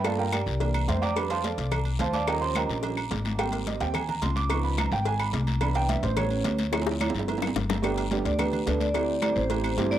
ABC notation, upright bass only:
X:1
M:4/4
L:1/8
Q:1/4=216
K:Gmix
V:1 name="Upright bass" clef=bass
G,,3 C,,3 F,,2- | F,,3 C,,3 _E,,2- | _E,,3 _B,,,3 _A,,,2- | _A,,,3 _E,,3 _D,,2- |
_D,,3 _A,,,3 C,,2- | C,,3 A,,,3 D,,2- | D,,3 G,,,3 G,,,2- | [K:G] G,,,3 D,,3 D,,2- |
D,,3 A,,,3 G,,,2 |]